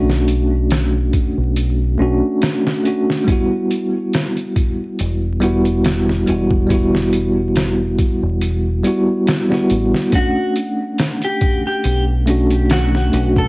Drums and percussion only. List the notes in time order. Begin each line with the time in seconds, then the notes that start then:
0.10 snare
0.28 closed hi-hat
0.70 snare, closed hi-hat
1.13 kick, closed hi-hat
1.56 closed hi-hat
2.42 snare, closed hi-hat
2.67 snare
2.85 closed hi-hat
3.10 snare
3.28 kick, closed hi-hat
3.71 closed hi-hat
4.13 snare, closed hi-hat
4.37 closed hi-hat
4.56 kick, closed hi-hat
4.99 closed hi-hat
5.42 closed hi-hat
5.65 closed hi-hat
5.84 snare, closed hi-hat
6.09 snare
6.27 closed hi-hat
6.51 kick
6.70 kick, closed hi-hat
6.95 snare
7.13 closed hi-hat
7.55 snare, closed hi-hat
7.99 kick, closed hi-hat
8.41 closed hi-hat
8.84 closed hi-hat
9.27 snare, closed hi-hat
9.52 snare
9.70 closed hi-hat
9.94 snare
10.12 kick, closed hi-hat
10.56 closed hi-hat
10.98 snare, closed hi-hat
11.22 closed hi-hat
11.41 kick, closed hi-hat
11.84 closed hi-hat
12.27 closed hi-hat
12.50 closed hi-hat
12.70 snare, closed hi-hat
12.95 snare
13.13 closed hi-hat
13.36 kick